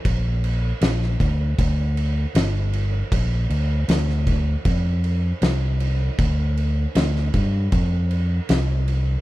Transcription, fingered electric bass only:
X:1
M:4/4
L:1/8
Q:1/4=78
K:Bblyd
V:1 name="Fingered electric bass" clef=bass
B,,,2 B,,, D,, D,,2 G,,,2 | B,,, D,, D,,2 F,,2 C,,2 | D,,2 D,, G,, F,,2 C,,2 |]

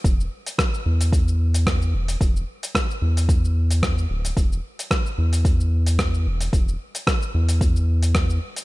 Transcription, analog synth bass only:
X:1
M:4/4
L:1/8
Q:"Swing 16ths" 1/4=111
K:Dmix
V:1 name="Analog synth bass" clef=bass
E,,, z2 E,,4 E,,, | E,,, z2 E,,4 D,,, | E,,, z2 E,,4 E,,, | E,,, z2 E,,4 z |]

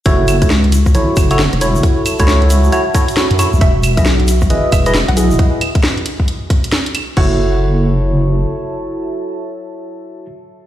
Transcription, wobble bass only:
X:1
M:4/4
L:1/16
Q:"Swing 16ths" 1/4=135
K:F#dor
V:1 name="Wobble bass" clef=bass
F,,,3 C,,4- C,, A,,, z F,,,3 E,,,2 F,,, | z3 C,,4- C,, z4 z F,,2 C,, | E,,,3 B,,,4- B,,, G,,, z E,,,3 B,,,2 E,,, | z16 |
F,,,12 z4 | z16 |]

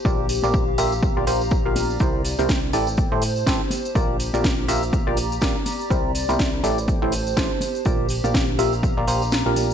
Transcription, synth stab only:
X:1
M:4/4
L:1/16
Q:"Swing 16ths" 1/4=123
K:Gdor
V:1 name="Synth stab"
[FGBd]2 z [FGBd]2 z [FGBe] z2 [FGBd] [FGBc] z2 [FGBf]3 | [EGBc]2 z [EGBc]2 z [EGAd] z2 [EGAc] z2 [EGAc] z3 | [FGBd]2 z [FGBd]2 z [FGBe] z2 [FGBd] z2 [FGBd] z3 | [EGBc]2 z [EGBc]2 z [EGAd] z2 [EGAc] z2 [EGAc] z3 |
[FGBd]2 z [FGBd]2 z [FGBe] z2 [FGBd] [FGBc] z2 [FGBf]3 |]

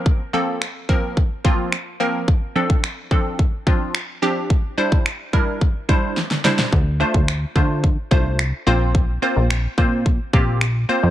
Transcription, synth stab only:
X:1
M:4/4
L:1/8
Q:1/4=108
K:Bblyd
V:1 name="Synth stab"
[F,B,CB] [F,B,CA] z [F,B,CB] z [F,B,CF] z [F,B,CB] | z [F,CDA] z [F,CDA] z [F,CDF] z [F,CDG] | z [G,DEc] z [G,DEB] z [G,DEc] z [G,DEc] | z [A,DFc] z [A,DFc] z [A,DFc] z [B,CFc]- |
[B,CFc] [B,CFc] z [B,CFc] z [B,CFG] z [B,CFc] |]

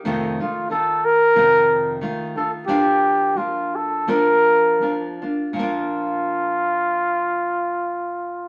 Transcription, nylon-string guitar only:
X:1
M:4/4
L:1/8
Q:"Swing" 1/4=83
K:Bb
V:1 name="Nylon-string guitar"
[F,,C,E,A,EF] [E,A,EF] [E,EF]2 [F,,C,E,EF]2 [E,A,EF] [E,A,EF] | [B,,F,B,DF]2 [F,B,DF]2 [B,,F,B,DF]2 [F,B,DF] [B,DF] | [B,,F,B,DF]8 |]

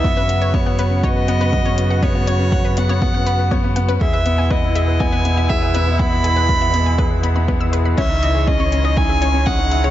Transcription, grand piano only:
X:1
M:4/4
L:1/16
Q:1/4=121
K:E
V:1 name="Grand piano"
B, C F B B, B, B, C F B B, B, B, C F B | B, B, B, C F B B, B, B, C F B B, B, B, C | G B B, B, B, E G B B, B, B, E G B B, B, | B, E G B B, B, B, E G B B, B, B, E G B |
C D E G C C C D E G C C C D E G |]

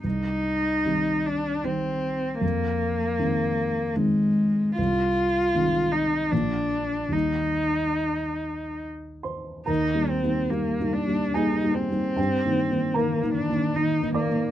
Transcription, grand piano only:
X:1
M:3/4
L:1/8
Q:1/4=75
K:Fdor
V:1 name="Grand piano"
z6 | z6 | [K:Eb] z6 | z4 z [cc'] |
[Bb]4 [Aa]2 | [Gg]2 [Bb]3 [dd'] |]
V:2 name="Grand piano"
C,,2 [E,G,C]2 [E,G,C]2 | F,,2 [E,A,C]2 [E,A,C]2 | [K:Eb] C,,2 [E,A,C]2 [B,,,F,B,F]2 | [E,,G,B,E]6 |
(3E,, [G,B,E] [G,B,E] (3[G,B,E] [G,B,E] [G,B,E] (3[G,B,E] [G,B,E] [G,B,E] | (3G,, [E,B,E] [E,B,E] (3[E,B,E] [E,B,E] [E,B,E] (3[E,B,E] [E,B,E] [E,B,E] |]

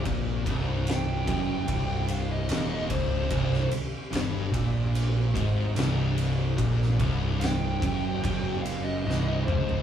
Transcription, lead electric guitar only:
X:1
M:4/4
L:1/16
Q:1/4=73
K:Cm
V:1 name="Lead electric guitar"
z4 g6 f e3 c2- | c2 z12 z2 | z4 g6 f e3 c2 |]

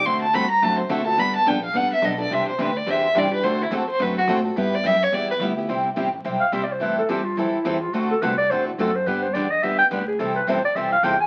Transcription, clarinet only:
X:1
M:4/4
L:1/8
Q:"Swing" 1/4=213
K:G
V:1 name="Clarinet"
z8 | z8 | z8 | z8 |
z8 | [K:C] z4 z f (3e d c | B A G F E3 F | ^F A B d c E A c |
B c d _e =e g B _A | A B c d e f g _a |]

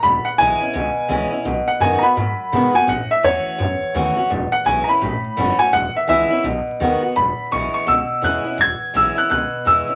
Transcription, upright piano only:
X:1
M:4/4
L:1/8
Q:"Swing" 1/4=168
K:E
V:1 name="Upright piano"
b f g6 | z f g [^ab]4 g | f e c4 z2 | z f g [^ab]4 g |
f e e2 z4 | b2 c' c' e'2 f'2 | g'2 e' f' f'2 e'2 |]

